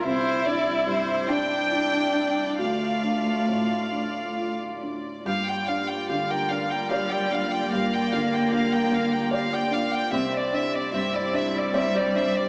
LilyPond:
<<
  \new Staff \with { instrumentName = "Violin section" } { \time 6/8 \key g \dorian \tempo 4. = 49 c''8 d''8 c''8 g''4. | f''2~ f''16 r8. | f''16 g''16 f''16 g''16 f''16 g''16 f''16 g''16 f''16 g''16 f''16 g''16 | f''16 g''16 f''16 g''16 f''16 g''16 f''16 g''16 f''16 g''16 f''16 g''16 |
e''16 d''16 e''16 d''16 e''16 d''16 e''16 d''16 e''16 d''16 e''16 d''16 | }
  \new Staff \with { instrumentName = "Harp" } { \time 6/8 \key g \dorian r2. | r2. | g'4 g'16 bes'8 bes'16 g'16 d''16 f''8 | g'4 g'16 bes'8 bes'16 g'16 d''16 f''8 |
c'4 c'16 e'8 e'16 c'16 g'16 c''8 | }
  \new Staff \with { instrumentName = "String section" } { \time 6/8 \key g \dorian << { d''2.~ | d''2. | d''2.~ | d''2. |
d''2. | } \\ { <g e'>2. | <a f'>2. | <bes f'>2.~ | <bes f'>2. |
<c' e'>2. | } >> }
  \new Staff \with { instrumentName = "Felt piano" } { \time 6/8 \key g \dorian c,8 d'8 g,8 d'8 e'8 d'8 | d,8 d'8 a,8 d'8 f'8 d'8 | g,8 d'8 d8 d'8 d''8 d'8 | g,8 d8 d'8 d8 d''8 d'8 |
c,8 d'8 g,8 d'8 d''8 d'8 | }
  \new Staff \with { instrumentName = "Cello" } { \time 6/8 \key g \dorian e'4. d'4. | a2~ a8 r8 | r4. g4. | bes2. |
r4. g4. | }
>>